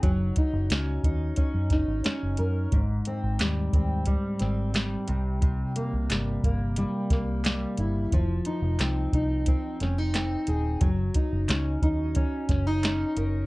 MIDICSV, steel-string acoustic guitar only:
0, 0, Header, 1, 2, 480
1, 0, Start_track
1, 0, Tempo, 674157
1, 23, Time_signature, 4, 2, 24, 8
1, 9586, End_track
2, 0, Start_track
2, 0, Title_t, "Steel-string acoustic guitar"
2, 0, Program_c, 0, 25
2, 0, Note_on_c, 0, 63, 55
2, 0, Note_on_c, 0, 68, 51
2, 17, Note_on_c, 0, 54, 66
2, 72, Note_off_c, 0, 68, 0
2, 261, Note_off_c, 0, 63, 0
2, 263, Note_on_c, 0, 63, 54
2, 506, Note_on_c, 0, 61, 59
2, 740, Note_off_c, 0, 63, 0
2, 743, Note_on_c, 0, 63, 53
2, 970, Note_off_c, 0, 61, 0
2, 978, Note_on_c, 0, 61, 59
2, 1219, Note_off_c, 0, 63, 0
2, 1222, Note_on_c, 0, 63, 57
2, 1450, Note_off_c, 0, 61, 0
2, 1459, Note_on_c, 0, 61, 60
2, 1699, Note_on_c, 0, 70, 55
2, 1940, Note_off_c, 0, 54, 0
2, 1944, Note_on_c, 0, 44, 72
2, 1989, Note_off_c, 0, 61, 0
2, 1989, Note_off_c, 0, 70, 0
2, 2187, Note_on_c, 0, 60, 52
2, 2424, Note_on_c, 0, 55, 55
2, 2660, Note_off_c, 0, 60, 0
2, 2663, Note_on_c, 0, 60, 50
2, 2893, Note_off_c, 0, 55, 0
2, 2896, Note_on_c, 0, 55, 59
2, 3134, Note_off_c, 0, 60, 0
2, 3137, Note_on_c, 0, 60, 52
2, 3371, Note_off_c, 0, 55, 0
2, 3374, Note_on_c, 0, 55, 65
2, 3617, Note_on_c, 0, 48, 67
2, 3671, Note_off_c, 0, 44, 0
2, 3714, Note_off_c, 0, 63, 0
2, 3847, Note_off_c, 0, 48, 0
2, 3855, Note_on_c, 0, 48, 64
2, 4096, Note_off_c, 0, 60, 0
2, 4099, Note_on_c, 0, 58, 55
2, 4341, Note_off_c, 0, 55, 0
2, 4344, Note_on_c, 0, 55, 55
2, 4575, Note_off_c, 0, 58, 0
2, 4584, Note_on_c, 0, 58, 54
2, 4815, Note_off_c, 0, 55, 0
2, 4824, Note_on_c, 0, 55, 63
2, 5052, Note_off_c, 0, 58, 0
2, 5061, Note_on_c, 0, 58, 55
2, 5294, Note_off_c, 0, 55, 0
2, 5302, Note_on_c, 0, 55, 69
2, 5548, Note_on_c, 0, 64, 60
2, 5779, Note_off_c, 0, 48, 0
2, 5782, Note_off_c, 0, 55, 0
2, 5790, Note_on_c, 0, 53, 74
2, 5829, Note_off_c, 0, 58, 0
2, 5833, Note_off_c, 0, 64, 0
2, 6026, Note_on_c, 0, 63, 49
2, 6266, Note_on_c, 0, 60, 53
2, 6507, Note_off_c, 0, 63, 0
2, 6510, Note_on_c, 0, 63, 55
2, 6740, Note_off_c, 0, 60, 0
2, 6748, Note_on_c, 0, 60, 63
2, 6984, Note_off_c, 0, 63, 0
2, 6987, Note_on_c, 0, 61, 57
2, 7105, Note_off_c, 0, 61, 0
2, 7105, Note_on_c, 0, 63, 46
2, 7213, Note_off_c, 0, 60, 0
2, 7222, Note_on_c, 0, 60, 66
2, 7463, Note_on_c, 0, 68, 65
2, 7694, Note_off_c, 0, 53, 0
2, 7697, Note_on_c, 0, 54, 76
2, 7750, Note_off_c, 0, 60, 0
2, 7750, Note_off_c, 0, 68, 0
2, 7751, Note_off_c, 0, 63, 0
2, 7941, Note_on_c, 0, 63, 55
2, 8179, Note_on_c, 0, 61, 55
2, 8417, Note_off_c, 0, 63, 0
2, 8420, Note_on_c, 0, 63, 53
2, 8649, Note_off_c, 0, 61, 0
2, 8657, Note_on_c, 0, 61, 61
2, 8886, Note_off_c, 0, 61, 0
2, 8892, Note_off_c, 0, 63, 0
2, 8894, Note_on_c, 0, 61, 55
2, 9019, Note_off_c, 0, 61, 0
2, 9019, Note_on_c, 0, 63, 48
2, 9142, Note_on_c, 0, 61, 61
2, 9381, Note_on_c, 0, 70, 60
2, 9586, Note_off_c, 0, 54, 0
2, 9586, Note_off_c, 0, 61, 0
2, 9586, Note_off_c, 0, 63, 0
2, 9586, Note_off_c, 0, 70, 0
2, 9586, End_track
0, 0, End_of_file